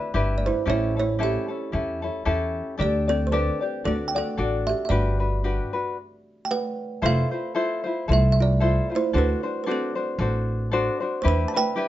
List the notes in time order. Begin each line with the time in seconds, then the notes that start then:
Already playing: D4 E4 F#4 B4 D5
0.14 G1 D4 E4 G4 B4
0.38 D5
0.46 E4 C5
0.66 A1 C#4 E4 G4 A4
0.70 E4 C#5
0.96 C#4 E4 A4 C#5
1.19 C#4 E4 G4 A4
1.23 G4 E5
1.48 C#4 E4 A4
1.72 E2 C#4 E4 G4 A4
2.02 C#4 E4 A4
2.25 E2 C#4 E4 G4 A4
2.78 D2 D4 G4 A4 D5
2.82 G4
3.08 C4 D4 G4 A4 D5
3.27 C5
3.32 D4 G4 A4 B4 D5
3.61 D4 G4 D5
3.84 D2 D4 F#4 A4 D5
4.08 G5
4.15 D4 F#4 A4 D5 F#5
4.37 A1 D4 F#4 A4 D5
4.67 G4 E5
4.85 E5
4.89 G1 D4 F#4 G4 B4 D5
5.20 D4 F#4 B4
5.44 D4 F#4 G4 B4
5.73 D4 F#4 B4
6.45 G5
6.51 B4 F#5
7.02 F1 E4 F4 A4 C5
7.06 F5
7.31 E4 F4 C5
7.55 E4 F4 A4 C5
7.84 E4 F4 C5
8.08 C2 E4 F4 A4 C5
8.12 A4 E5
8.32 E5
8.40 F4 D5
8.60 E4 F4 A4 C5
8.89 E4 F4 C5
8.95 E4 C5
9.13 D2 D4 F#4 A4 C5
9.18 B4
9.43 D4 F#4 C5
9.64 D4 F#4 A4 B4
9.68 C4 A4 C5
9.95 D4 F#4 C5
10.19 A1 D4 F#4 A4 C5
10.71 D4 F#4 A4 C5
11.00 D4 F#4 C5
11.22 E2 D4 E4 G4 B4 C5
11.28 D4 B4
11.48 A5
11.54 D4 E4 B4 G5
11.76 D4 E4 G4 B4